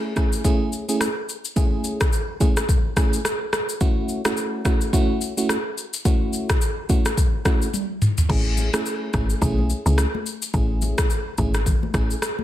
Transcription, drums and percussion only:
0.16 kick, cross-stick, shaker
0.33 shaker
0.45 kick, shaker
0.73 shaker
0.89 shaker
1.01 cross-stick, shaker
1.29 shaker
1.45 shaker
1.57 kick, shaker
1.84 shaker
2.01 kick, cross-stick, shaker
2.13 shaker
2.41 kick, shaker
2.57 cross-stick, shaker
2.69 kick, shaker
2.97 kick, cross-stick, shaker
3.13 shaker
3.25 cross-stick, shaker
3.53 cross-stick, shaker
3.69 shaker
3.81 kick, shaker
4.09 shaker
4.25 cross-stick, shaker
4.37 shaker
4.65 kick, cross-stick, shaker
4.81 shaker
4.93 kick, shaker
5.21 shaker
5.38 shaker
5.49 cross-stick, shaker
5.78 shaker
5.94 shaker
6.05 kick, shaker
6.33 shaker
6.50 kick, cross-stick, shaker
6.61 shaker
6.89 kick, shaker
7.05 cross-stick, shaker
7.17 kick, shaker
7.45 kick, cross-stick, shaker
7.62 shaker
7.74 high tom, shaker
8.02 mid tom, shaker
8.18 floor tom, shaker
8.30 kick, crash, low conga
8.57 high conga, shaker
8.74 cross-stick, shaker
8.86 shaker
9.14 kick, cross-stick, high conga, low conga, shaker
9.30 shaker
9.42 kick, low conga, shaker
9.58 high conga
9.70 high conga, shaker
9.86 shaker
9.98 cross-stick, shaker
10.15 high conga
10.26 shaker
10.42 shaker
10.54 kick, low conga, shaker
10.82 high conga, shaker
10.98 kick, cross-stick, shaker
11.10 shaker
11.38 kick, high conga, low conga, shaker
11.54 cross-stick, shaker
11.66 kick, low conga, shaker
11.83 high conga
11.94 kick, cross-stick, high conga, shaker
12.11 shaker
12.22 cross-stick, shaker
12.39 high conga

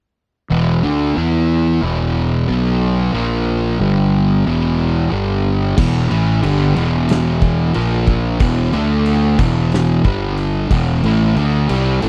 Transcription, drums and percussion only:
5.78 kick, crash
6.11 crash
6.43 crash
6.76 crash
7.09 snare, crash
7.41 kick, crash
7.74 crash
8.07 kick, crash
8.40 kick, crash
8.73 crash
9.06 crash
9.39 kick, crash
9.72 snare, crash
10.04 kick, crash
10.37 crash
10.71 kick, crash
11.04 crash
11.36 crash
11.69 crash
12.02 crash

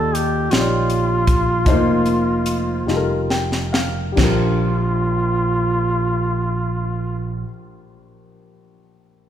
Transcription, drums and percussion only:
0.15 closed hi-hat
0.51 snare, closed hi-hat
0.90 closed hi-hat
1.27 kick, closed hi-hat
1.66 kick, closed hi-hat
2.06 closed hi-hat
2.46 closed hi-hat
2.88 snare
3.30 snare
3.52 snare
3.74 snare
4.17 kick, snare, china

